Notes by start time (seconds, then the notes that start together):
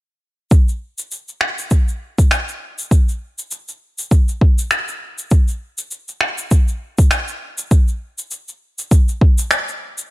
0.51 kick, cabasa
0.68 cabasa
0.98 cabasa
1.11 cabasa
1.28 cabasa
1.41 finger snap
1.59 cabasa
1.71 kick, cabasa
1.88 cabasa
2.18 kick, cabasa
2.31 finger snap, cabasa
2.48 cabasa
2.78 cabasa
2.91 kick, cabasa
3.09 cabasa
3.39 cabasa
3.51 cabasa
3.68 cabasa
3.98 cabasa
4.11 kick, cabasa
4.28 cabasa
4.41 kick
4.58 cabasa
4.71 finger snap, cabasa
4.88 cabasa
5.18 cabasa
5.31 kick, cabasa
5.48 cabasa
5.78 cabasa
5.91 cabasa
6.08 cabasa
6.21 finger snap
6.38 cabasa
6.51 kick, cabasa
6.68 cabasa
6.98 kick, cabasa
7.11 finger snap, cabasa
7.28 cabasa
7.58 cabasa
7.71 kick, cabasa
7.88 cabasa
8.18 cabasa
8.31 cabasa
8.48 cabasa
8.79 cabasa
8.91 kick, cabasa
9.08 cabasa
9.21 kick
9.38 cabasa
9.51 finger snap, cabasa
9.68 cabasa
9.98 cabasa